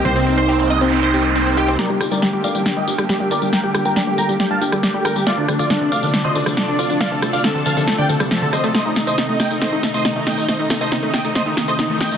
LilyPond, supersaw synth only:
\new Staff \with { instrumentName = "Supersaw synth" } { \time 4/4 \key g \minor \tempo 4 = 138 c''16 c'16 c'16 c''16 c'16 c'16 ees''16 c'16 c'16 c''16 c'16 r16 c'16 c'16 g'16 c'16 | <bes' d''>16 g'16 g'16 <bes' d''>16 g'16 g'16 <d'' f''>16 g'16 g'16 <g' ees''>16 g'16 r16 g'16 g'16 <bes' d''>16 g'16 | <bes' g''>16 g'16 g'16 <bes' g''>16 g'16 g'16 <g'' bes''>16 g'16 g'16 <f'' a''>16 g'16 r16 g'16 g'16 <bes' g''>16 g'16 | <f' d''>16 d'16 d'16 <f' d''>16 d'16 d'16 <d'' f''>16 d'16 d'16 <c'' ees''>16 d'16 r16 d'16 d'16 <f' d''>16 d'16 |
<d'' f''>16 a'16 a'16 <d'' f''>16 a'16 a'16 <f'' a''>16 a'16 a'16 <d'' g''>16 a'16 r16 a'16 a'16 <c'' ees''>16 a'16 | <c'' ees''>16 ees'16 ees'16 <c'' ees''>16 ees'16 ees'16 <ees'' g''>16 ees'16 <c'' ees''>16 ees'16 ees'16 <c'' ees''>16 ees'16 ees'16 <ees'' g''>16 ees'16 | <c'' ees''>16 ees'16 ees'16 <c'' ees''>16 ees'16 ees'16 <ees'' g''>16 ees'16 <c'' ees''>16 ees'16 ees'16 <c'' ees''>16 ees'16 ees'16 <ees'' g''>16 ees'16 | }